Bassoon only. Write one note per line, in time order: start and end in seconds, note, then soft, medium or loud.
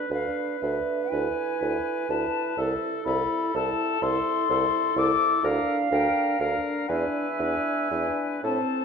0.10 0.26 D2 soft
0.62 0.78 D2 soft
1.12 1.28 D2 soft
1.61 1.77 D2 soft
2.09 2.25 D2 soft
2.57 2.73 C2 soft
3.06 3.22 C2 soft
3.54 3.70 C2 soft
4.02 4.18 C2 soft
4.49 4.65 C2 soft
4.96 5.12 C2 soft
5.43 5.59 D2 soft
5.91 6.07 D2 soft
6.40 6.56 D2 soft
6.89 7.05 E2 soft
7.39 7.55 E2 soft
7.91 8.07 E2 soft
8.44 8.60 A2 soft